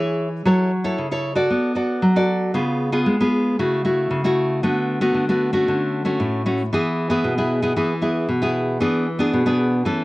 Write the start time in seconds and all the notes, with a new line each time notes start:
Already playing: E3 E4 G#4 C#5
0.46 F#3 E4 A4 C#5
0.84 E4 A4 C#5
0.98 C#3
1.11 E4 A4 C#5
1.35 F#4 A4 D5
1.50 B3
1.75 F#4 A4 D5
2.02 F#3
2.16 F#4 A4 D5
2.54 C#3 B3 F4 G#4
2.92 B3 F4 G#4
3.06 G#3
3.21 B3 F4 G#4
3.59 C#3 A3 E4 F#4
3.85 A3 E4 F#4
4.11 C#3
4.24 A3 E4 F#4
4.63 D3 A3 B3 F#4
5.01 A3 B3 F#4
5.14 D3
5.29 A3 B3 F#4
5.53 A3 C#4 F#4
5.68 D3
6.05 A3 C#4 F#4
6.20 A2
6.46 A3 C#4 F#4
6.73 E3 B3 E4 G#4
7.10 B3 E4 G#4
7.24 B2
7.38 B3 E4 G#4
7.62 B3 E4 G#4
7.76 E3 B3 E4 G#4
8.02 B3 E4 G#4
8.29 B2
8.42 B3 E4 G#4
8.80 E3 B3 D4 G#4
9.19 B3 D4 G#4
9.33 B2
9.46 B3 D4 G#4
9.85 E3 A3 C#4 A4